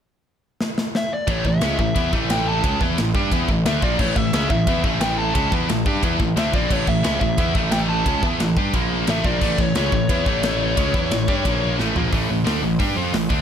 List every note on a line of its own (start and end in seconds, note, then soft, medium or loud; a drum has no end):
0.61 snare medium
0.78 snare medium
0.95 1.13 E5 medium
0.95 snare medium
1.14 1.31 D5 medium
1.27 1.44 A1 loud
1.27 1.43 A2 medium
1.27 1.44 E3 medium
1.27 1.45 A3 loud
1.27 1.47 C#5 medium
1.27 kick loud
1.27 ride bell medium
1.45 1.61 A1 medium
1.45 1.58 A2 medium
1.45 1.59 E3 medium
1.45 1.78 E5 medium
1.45 kick medium
1.61 1.77 C#2 medium
1.61 1.78 C#3 medium
1.61 1.78 G#3 loud
1.61 1.79 C#4 loud
1.61 snare loud
1.61 ride bell medium
1.78 1.95 A1 medium
1.78 1.92 A2 medium
1.78 1.93 E3 medium
1.78 2.11 E5 medium
1.78 kick medium
1.95 2.12 E2 medium
1.95 2.11 E3 medium
1.95 2.12 B3 loud
1.95 2.12 E4 loud
1.95 kick loud
1.95 ride bell medium
2.12 2.60 A1 loud
2.12 2.63 A2 medium
2.12 2.63 E3 medium
2.12 2.63 A3 medium
2.12 kick loud
2.30 2.48 G5 loud
2.30 snare loud
2.30 ride bell medium
2.48 2.79 A5 medium
2.63 2.80 C#2 medium
2.63 2.80 C#3 medium
2.63 2.81 G#3 medium
2.63 2.81 C#4 loud
2.63 kick loud
2.63 ride bell medium
2.81 2.97 E2 medium
2.81 2.97 E3 medium
2.81 2.98 B3 medium
2.81 2.98 E4 loud
2.81 kick loud
2.98 3.14 A1 medium
2.98 3.12 A2 medium
2.98 3.12 E3 medium
2.98 snare loud
2.98 ride bell medium
3.15 3.31 G2 medium
3.15 3.31 G3 medium
3.15 3.31 D4 medium
3.15 3.32 G4 loud
3.15 kick loud
3.31 3.47 E2 loud
3.31 3.48 E3 medium
3.31 3.48 B3 medium
3.31 3.49 E4 loud
3.31 kick loud
3.31 ride bell medium
3.48 3.64 A1 medium
3.48 3.63 A2 medium
3.48 3.63 E3 medium
3.48 kick medium
3.65 3.81 D2 loud
3.65 3.82 D3 medium
3.65 3.82 A3 loud
3.65 3.82 D4 medium
3.65 3.83 E5 medium
3.65 snare loud
3.65 ride bell medium
3.82 3.98 A#1 medium
3.82 3.99 A#2 loud
3.82 3.99 F3 loud
3.82 4.00 A#3 loud
3.82 3.99 D5 medium
3.82 kick loud
3.99 4.15 A1 loud
3.99 4.16 A2 medium
3.99 4.16 E3 loud
3.99 4.17 A3 medium
3.99 4.16 C#5 medium
3.99 kick loud
3.99 crash medium
4.16 4.32 A1 medium
4.16 4.30 A2 medium
4.16 4.30 E3 medium
4.16 4.49 E5 loud
4.16 kick loud
4.33 4.49 C#2 loud
4.33 4.50 C#3 loud
4.33 4.50 G#3 medium
4.33 4.50 C#4 loud
4.33 snare loud
4.33 ride bell medium
4.50 4.66 A1 medium
4.50 4.64 A2 medium
4.50 4.65 E3 medium
4.50 4.82 E5 medium
4.50 kick medium
4.67 4.83 E2 medium
4.67 4.84 E3 loud
4.67 4.84 B3 loud
4.67 4.84 E4 loud
4.67 kick loud
4.67 ride bell medium
4.84 5.31 A1 medium
4.84 5.34 A2 medium
4.84 5.35 E3 medium
4.84 5.35 A3 loud
4.84 kick loud
5.01 5.18 G5 loud
5.01 snare loud
5.01 ride bell medium
5.18 5.52 A5 medium
5.35 5.51 C#2 medium
5.35 5.51 C#3 medium
5.35 5.51 G#3 medium
5.35 5.52 C#4 loud
5.35 kick loud
5.35 ride bell medium
5.52 5.68 E2 medium
5.52 5.68 E3 medium
5.52 5.68 B3 loud
5.52 5.69 E4 loud
5.52 kick loud
5.69 5.85 A1 medium
5.69 5.83 A2 medium
5.69 5.83 E3 medium
5.69 snare loud
5.69 ride bell medium
5.86 6.02 G2 medium
5.86 6.02 G3 medium
5.86 6.02 D4 medium
5.86 6.03 G4 loud
5.86 kick loud
6.02 6.19 E2 medium
6.02 6.18 E3 medium
6.02 6.19 B3 medium
6.02 6.19 E4 loud
6.02 kick loud
6.02 ride bell medium
6.19 6.36 A1 medium
6.19 6.33 A2 medium
6.19 6.33 E3 medium
6.19 kick medium
6.36 6.52 D2 medium
6.36 6.53 D3 medium
6.36 6.53 A3 medium
6.36 6.53 D4 medium
6.36 6.55 E5 medium
6.36 snare loud
6.36 ride bell medium
6.53 6.69 A#1 medium
6.53 6.69 A#2 medium
6.53 6.70 F3 medium
6.53 6.70 A#3 loud
6.53 6.73 D5 medium
6.53 kick loud
6.70 6.86 A1 medium
6.70 6.86 A2 medium
6.70 6.87 E3 medium
6.70 6.87 A3 loud
6.70 6.88 C#5 medium
6.70 kick loud
6.70 crash loud
6.87 7.03 A1 medium
6.87 7.01 A2 medium
6.87 7.01 E3 medium
6.87 7.19 E5 medium
6.87 kick medium
7.03 7.21 C#2 medium
7.03 7.20 C#3 medium
7.03 7.21 G#3 loud
7.03 7.21 C#4 loud
7.03 snare loud
7.03 ride bell medium
7.20 7.37 A1 medium
7.20 7.35 A2 medium
7.20 7.35 E3 medium
7.20 7.52 E5 medium
7.20 kick medium
7.38 7.54 E2 medium
7.38 7.55 E3 medium
7.38 7.55 B3 loud
7.38 7.55 E4 loud
7.38 kick loud
7.38 ride bell medium
7.55 8.02 A1 loud
7.55 8.05 A2 medium
7.55 8.06 E3 medium
7.55 8.06 A3 loud
7.55 kick loud
7.72 7.77 G5 loud
7.72 snare loud
7.72 ride bell medium
7.89 8.23 A5 loud
8.06 8.22 C#2 medium
8.06 8.22 C#3 medium
8.06 8.23 G#3 medium
8.06 8.23 C#4 medium
8.06 kick loud
8.06 ride bell medium
8.23 8.39 E2 medium
8.23 8.39 E3 medium
8.23 8.39 B3 loud
8.23 8.40 E4 loud
8.23 kick loud
8.40 8.56 A1 medium
8.40 8.54 A2 medium
8.40 8.54 E3 medium
8.40 snare loud
8.40 ride bell medium
8.57 8.72 G2 medium
8.57 8.73 G3 medium
8.57 8.74 D4 loud
8.57 8.74 G4 loud
8.57 kick loud
8.74 9.05 A#1 loud
8.74 9.07 A#2 medium
8.74 9.08 F3 medium
8.74 9.08 A#3 loud
8.74 kick loud
8.74 ride bell medium
9.07 9.23 A1 medium
9.07 9.24 A2 medium
9.07 9.25 E3 medium
9.07 9.25 A3 loud
9.07 9.25 E5 loud
9.07 snare loud
9.07 ride bell medium
9.24 9.40 A#1 medium
9.24 9.40 A#2 medium
9.24 9.41 F3 loud
9.24 9.41 A#3 loud
9.24 9.60 D5 medium
9.24 kick loud
9.41 9.57 A1 medium
9.41 9.56 A2 medium
9.41 9.57 E3 loud
9.41 9.58 A3 loud
9.41 kick loud
9.41 crash medium
9.58 9.74 A1 medium
9.58 9.71 A2 medium
9.58 9.72 E3 medium
9.58 9.75 C#5 loud
9.58 kick loud
9.75 9.91 C#2 medium
9.75 9.92 C#3 medium
9.75 9.92 G#3 loud
9.75 9.92 C#4 loud
9.75 11.75 C#5 medium
9.75 snare loud
9.75 ride bell medium
9.92 10.08 A1 medium
9.92 10.06 A2 medium
9.92 10.06 E3 medium
9.92 kick medium
10.09 10.25 E2 medium
10.09 10.26 E3 medium
10.09 10.26 B3 loud
10.09 10.26 E4 loud
10.09 kick loud
10.09 ride bell medium
10.26 10.73 A1 medium
10.26 10.77 A2 medium
10.26 10.77 E3 medium
10.26 10.77 A3 medium
10.26 kick loud
10.43 snare loud
10.43 ride bell medium
10.77 10.93 C#2 medium
10.77 10.93 C#3 medium
10.77 10.93 G#3 medium
10.77 10.94 C#4 loud
10.77 kick loud
10.77 ride bell medium
10.94 11.10 E2 medium
10.94 11.10 E3 loud
10.94 11.11 B3 loud
10.94 11.11 E4 loud
10.94 kick loud
11.11 11.26 A1 medium
11.11 11.24 A2 medium
11.11 11.25 E3 medium
11.11 snare loud
11.11 ride bell medium
11.28 11.44 G2 medium
11.28 11.44 G3 medium
11.28 11.44 D4 medium
11.28 11.44 G4 loud
11.28 kick loud
11.45 11.76 A#1 medium
11.45 11.78 A#2 medium
11.45 11.78 F3 loud
11.45 11.78 A#3 medium
11.45 kick medium
11.45 ride bell medium
11.79 11.94 A1 medium
11.79 11.95 A2 medium
11.79 11.95 E3 medium
11.79 11.95 A3 medium
11.79 snare medium
11.95 12.11 A#1 medium
11.95 12.12 A#2 medium
11.95 12.12 F3 medium
11.95 12.12 A#3 loud
11.95 floor tom medium
12.12 12.28 A1 medium
12.12 12.28 A2 medium
12.12 12.28 E3 medium
12.12 12.29 A3 medium
12.12 kick loud
12.12 open hi-hat soft
12.30 12.45 A1 medium
12.30 12.43 A2 medium
12.30 12.43 E3 medium
12.45 12.62 D2 medium
12.45 12.62 D3 medium
12.45 12.62 A3 loud
12.45 12.62 D4 medium
12.45 snare loud
12.45 open hi-hat soft
12.62 12.78 A1 medium
12.62 12.76 A2 medium
12.62 12.76 E3 medium
12.79 12.95 G2 medium
12.79 12.96 G3 medium
12.79 12.96 D4 medium
12.79 12.96 G4 loud
12.79 kick medium
12.79 open hi-hat soft
12.96 13.12 F2 medium
12.96 13.13 F3 medium
12.96 13.13 C4 medium
12.96 13.13 F4 medium
13.13 13.29 A1 medium
13.13 13.27 A2 medium
13.13 13.27 E3 medium
13.13 snare loud
13.13 open hi-hat soft
13.29 13.41 D2 medium
13.29 13.41 D3 medium
13.29 13.41 A3 loud
13.29 13.41 D4 loud
13.29 kick loud